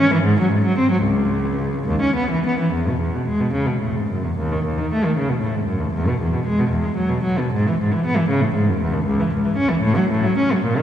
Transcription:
cello
0.00 C#4
0.14 E3
0.23 G#2
0.40 F#3
0.53 G#2
0.66 F#3
0.78 C4
0.91 F#3
1.04 C#2
1.88 D#2
2.02 C#4
2.16 B3
2.31 E3
2.46 B3
2.60 E3
2.73 E2
2.89 B2
3.00 E2
3.15 B2
3.28 G#3
3.40 B2
3.53 C#3
3.67 B2
3.82 A2
3.96 G#2
4.09 F#2
4.24 E2
4.38 D#2
4.52 D#3
4.65 D#2
4.78 D#3
4.93 A3
5.05 D#3
5.17 C#3
5.29 B2
5.41 A2
5.55 G#2
5.67 F#2
5.80 D#2
5.94 E2
6.08 B2
6.21 E2
6.33 B2
6.46 G#3
6.59 B2
6.70 E2
6.84 G#3
6.96 F#3
7.09 B2
7.23 F#3
7.39 B2
7.53 G#2
7.68 E3
7.81 G#2
7.93 E3
8.06 B3
8.17 E3
8.30 C#3
8.41 A2
8.54 G#2
8.69 F#2
8.81 E2
8.93 D#2
9.05 C#2
9.21 E3
9.34 C#2
9.45 E3
9.57 C#4
9.70 E3
9.82 A2
9.97 F#3
10.11 A2
10.25 F#3
10.38 C#4
10.53 F#3
10.64 A#2
10.78 D#3

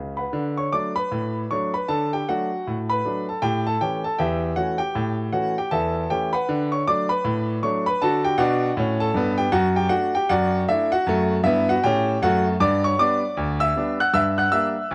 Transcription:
grand piano
Already playing: C#2 C#3
0.17 B4 F#5 B5
0.33 D3
0.57 C#5 C#6
0.72 F#3 A3 D4 D5 D6
0.95 B4 B5
1.11 A2
1.51 F#3 A3 D4 C#5 C#6
1.74 B4 B5
1.88 D3 A4 A5
2.13 G4 G5
2.29 F#3 A3 D4 F#4 F#5
2.67 A2
2.89 B4 B5
3.05 F#3 A3 D4
3.29 A4 A5
3.42 A2 G4 G5
3.67 A4 A5
3.81 E3 A3 C#4 G4 G5
4.04 A4 A5
4.19 E2 G4 E5 G5
4.56 E3 A3 C#4 F#4 F#5
4.78 G4 G5
4.95 A2
5.32 E3 A3 C#4 F#4 F#5
5.58 G4 G5
5.71 E2 A4 E5 A5
6.10 E3 A3 C#4 G4 G5
6.33 B4 F#5 B5
6.49 D3
6.72 C#5 C#6
6.87 F#3 A3 D4 D5 D6
7.09 B4 B5
7.25 A2
7.63 F#3 A3 D4 C#5 C#6
7.86 B4 B5
8.02 D3 F#4 A4 A5
8.25 G4 G5
8.38 B2 D4 F#4 F#5
8.77 A2 C#4
9.00 A4 A5
9.14 G2 B3
9.38 G4 G5
9.52 F#2 F#4 F#5
9.76 G4 G5
9.89 A3 D4 F#4 F#5
10.15 G4 G5
10.29 F#2 F#4 D5 F#5
10.69 A3 D4 E4 E5
10.92 F#4 F#5
11.07 F#2 A3
11.44 G2 B3 E4 E5
11.69 F#4 F#5
11.84 A2 C#4 G4 G5
12.22 F#2 A3 F#4 F#5
12.60 G2 D5 D6
12.84 C#5 C#6
12.99 G3 B3 D4 D5 D6
13.37 D2
13.60 E5 E6
13.76 G3 B3 D4
14.00 F#5 F#6
14.14 G2 E5 E6
14.38 F#5 F#6
14.52 G3 A#3 D4 E5 E6
14.91 D2

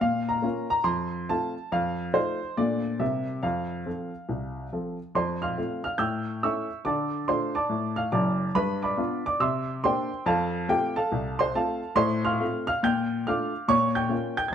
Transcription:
upright piano
0.01 A#2 F5
0.29 A#5
0.42 A#3 C#4 F4
0.70 A#5
0.84 F2 C6
1.29 A3 C4 F4 A5
1.72 F2 F5
2.14 A3 D#4 F4 C5
2.57 A#2 A3 D4 F4 D5
2.99 C3 G3 C4 A#4 E5
3.43 F2 F5
3.86 F3 C4 A4
4.29 C2
4.73 F3 C4 A4
5.15 F2 C5 C6
5.42 F5 C6 F6
5.57 A3 C4 F4
5.84 F5 F6
5.98 A2 G5 E6 G6
6.43 A3 C#4 E4 E5 C#6 E6
6.85 D3 D5 A5 D6
7.28 A3 D4 F4 C5 C6
7.55 D5 A5 D6
7.69 A2
7.96 F5 F6
8.12 F#1 F#2 D5 A5 D6
8.55 G2 B4 B5
8.83 D5 B5 D6
8.97 B3 D4 F4
9.26 D5 D6
9.40 C3 E5 C6 E6
9.84 A#3 D4 G4 C5 G5 C6
10.26 F2 A4 F5 A5
10.68 A3 C4 F4 G4 G5
10.96 A4 F5 A5
11.12 C2
11.39 C5 C6
11.55 A3 C4 F4 A4 F5 A5
11.95 A2 C5 C6
12.25 F5 C6 F6
12.40 A3 C4 F4
12.67 F5 F6
12.83 A#2 G5 G6
13.27 A3 D4 F4 F5 D6 F6
13.68 A#2 C#5 C#6
13.95 G5 G6
14.09 A#3 C#4 F4
14.37 G5 G6
14.48 G#6

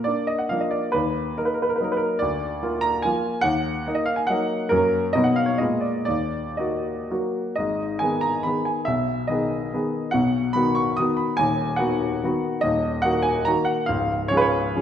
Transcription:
grand piano
0.04 A#3 D4 D5
0.27 D#5
0.38 F#5
0.49 F3 A#3 D4 F5
0.60 D#5
0.71 D5
0.92 D#2 B4
1.38 A#3 D#4 A#4
1.45 B4
1.54 A#4
1.62 B4
1.69 A#4
1.76 B4
1.80 F#3 A#3 D#4 A#4
1.92 B4
1.97 A#4
2.19 D2 D5
2.63 A#3 F4
2.81 A#5
3.02 F3 A#3 F4 G#5
3.41 D#2 F#5
3.87 A#3 D#4
3.95 D#5
4.06 F5
4.16 G#5
4.27 F#3 A#3 D#4 F#5
4.69 F#2 F#3 A#3 C#4 A#4
5.13 B2 F#3 B3 D#4 D#5
5.24 F#5
5.36 F5
5.46 C#5
5.58 A#2 G#3 B3 F4 D#5
5.81 D5
6.05 D#2 D5
6.57 A#3 F#4 D#5
7.11 F#3 A#3 F#4
7.56 G#1 G#2 D#5
7.99 D#3 B3 G#4 G#5
8.21 A#5
8.43 D#3 B3 G#4 B5
8.65 G#5
8.85 B1 B2 E5
9.27 D#3 B3 G#4 D#5
9.74 D#3 B3 G#4
10.11 B1 B2 F#5
10.53 D#3 B3 F#4 B5
10.75 C#6
10.97 D#3 B3 F#4 D#6
11.17 B5
11.37 D#1 D#2 G#5
11.76 D#3 B3 F#4 F#5
12.23 D#3 B3 F#4
12.61 D#1 D#2 D#5
13.02 D#3 A#3 F#4 F#5
13.22 G#5
13.45 D#3 A#3 F#4 A#5
13.65 F#5
13.86 C#1 C#2 F5
14.28 F3 C#4 G#4 C#5
14.37 B4
14.41 C#5
14.75 F3 C#4 G#4

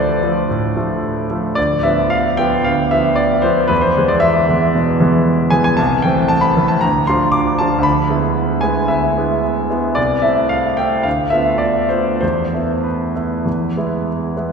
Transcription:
grand piano
Already playing: D2 F3 A3 B4 C5 D5
0.23 F3 A3
0.50 A2
0.77 F3 A3
1.31 F3 A3
1.55 D2 D5
1.83 F3 B3 E5
2.10 F5
2.37 F3 B3 G5
2.64 D2 F5
2.91 F3 B3 E5
3.16 D5
3.42 F3 B3 C5
3.68 E2 B4
3.81 C5
3.97 E3 G#3 B3
4.08 D5
4.20 E5
4.49 E3 G#3 B3
4.75 B2
5.00 E3 G#3 B3
5.50 E3 G#3 B3 G#5
5.64 G#5
5.77 C2 A5
6.02 E3 A3 C4 G5
6.28 A5
6.41 B5
6.57 E3 A3 C4
6.68 A5
6.81 D2 A#5
7.07 F3 D4 F4 C6
7.32 D6
7.59 F3 D4 F4 A5
7.78 D2
7.83 B5
8.10 G#3 B3 E4
8.61 G#3 B3 E4 G#5
8.88 D2 E5
9.18 G#3 B3 E4
9.70 G#3 B3 E4
9.95 C2 D5
10.22 A3 C4 E4 E5
10.49 F5
10.77 A3 C4 E4 G5
11.03 D2 F5
11.30 A3 B3 F4 E5
11.58 D5
11.89 A3 B3 F4 C5
12.21 E2 C5
12.54 A3 B3 E4
12.83 B4
13.16 A3 B3 E4
13.46 E2
13.77 G#3 B3 E4
14.36 G#3 B3 E4

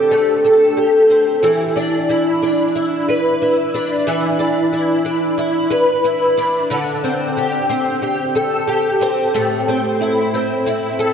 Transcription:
twelve-string acoustic guitar
Already playing: D3 A3 C4 G4 A4
0.11 A3
0.44 A4
0.77 G4
1.10 C4
1.43 E3
1.76 D4
2.09 E4
2.42 D4
2.75 E4
3.08 B4
3.42 E4
3.74 D4
4.07 E3
4.39 D4
4.73 E4
5.05 D4
5.38 E4
5.70 B4
6.04 E4
6.37 D4
6.70 D3
7.04 C4
7.37 G4
7.69 C4
8.02 G4
8.35 A4
8.67 G4
9.01 C4
9.34 A2
9.68 C4
10.01 E4
10.34 C4
10.66 E4
10.99 A4

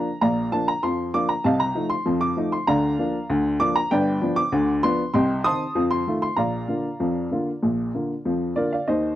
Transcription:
upright piano
Already playing: A#5
0.21 A#1 A#2 D5 F5 A#5
0.52 F3 A#3 D4 A5
0.68 A#5
0.83 F2 F3 C6
1.14 F3 A#3 D4 D6
1.29 A#5
1.44 C2 C3 D#5 F5 A5
1.60 A#5
1.75 F3 A3 D#4
1.90 C6
2.06 F2 F3
2.21 D6
2.37 F3 A3 D#4
2.52 C6
2.67 D2 D3 D5 F5 A#5
2.99 F3 A#3 D4
3.30 D2 D3
3.60 F3 A#3 D4 D6
3.76 A#5
3.91 G1 G2 B4 D5 G5
4.22 F3 B3 D4
4.36 D6
4.52 D2 D3
4.83 F3 B3 D4 C6
5.14 C2 C3 D#5 G5 C6
5.44 D#3 C4 D#4 A5 C6 D#6
5.75 F2 F3
5.91 C6
6.07 D#3 A3 F4
6.22 C6
6.37 A#1 A#2 D5 F5 A#5
6.68 D3 A#3 F4
7.00 F2 F3
7.31 D3 A#3 F4
7.63 A#1 A#2
7.94 D3 A#3 F4
8.25 F2 F3
8.56 D3 A#3 F4 A#4 D5
8.73 D5 F5
8.88 D#2 D#3 C5 D#5

